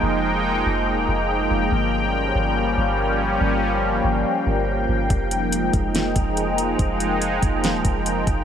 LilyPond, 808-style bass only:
\new Staff \with { instrumentName = "808-style bass" } { \clef bass \time 4/4 \key f \minor \tempo 4 = 142 f,,4. f,,8. ees,,16 f,,4 f,,8 | g,,4. g,,4 g,,4. | g,,4. g,,8 r8 g,,4 g,,8 | f,,4. f,,4 f,,4. |
f,,4. f,,8. ees,,16 f,,4 f,,8 | }